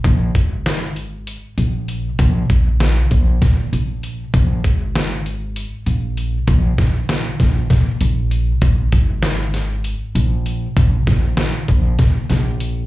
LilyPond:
<<
  \new Staff \with { instrumentName = "Upright bass" } { \clef bass \time 7/8 \key aes \major \tempo 4 = 98 bes,,8 aes,,2 bes,,4 | bes,,8 bes,,4 bes,,8 bes,8 bes,,4 | bes,,8 aes,,2 bes,,4 | bes,,8 bes,,4 bes,,8 bes,8 bes,,4 |
bes,,8 aes,,2 bes,,4 | bes,,8 bes,,4 bes,,8 bes,8 bes,,4 | }
  \new DrumStaff \with { instrumentName = "Drums" } \drummode { \time 7/8 <hh bd>8 <hh bd>8 <hh sn>8 hh8 hh8 hh8 hh8 | <hh bd>8 <hh bd>8 <hh sn>8 <hh bd>8 <hh bd sn>8 hh8 hh8 | <hh bd>8 <hh bd>8 <hh sn>8 hh8 hh8 hh8 hh8 | <hh bd>8 <hh bd sn>8 <hh sn>8 <hh bd sn>8 <hh bd sn>8 hh8 hh8 |
<hh bd>8 <hh bd>8 <hh sn>8 <hh sn>8 hh8 hh8 hh8 | <hh bd>8 <hh bd sn>8 <hh sn>8 <hh bd>8 <hh bd sn>8 <hh sn>8 hh8 | }
>>